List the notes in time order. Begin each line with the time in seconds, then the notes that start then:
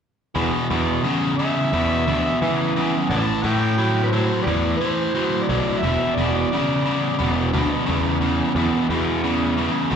0.35 E2 B2
0.70 E2 B2
1.04 E2 C#3
1.37 E2 C#3 E5
1.73 E2 B2
2.07 D2 E2 B2
2.42 E2 C#3 E3
2.76 E2 C#3
3.10 A1 A2 E3 D5 F#5 A5
3.42 A2 E3 G5
3.78 A2 F#3
4.04 B4
4.08 C5
4.13 A2 F#3
4.43 G4 B4 D5
4.47 E2 A2 E3
4.76 C5
4.81 A2 E3
5.15 A2 F#3
5.43 D5
5.49 B1 A2 F#3
5.78 E5
5.83 E1 E2 B2
6.15 E1 E2 B2 D5
6.52 E2 C#3
6.85 E2 C#3
7.19 E1 E2 B2
7.53 D2 E2 B2
7.86 E2 C#3
8.21 E2 C#3
8.55 E2 B2
8.89 E2 B2
9.24 E2 C#3
9.57 E2 C#3
9.90 B1 E2 B2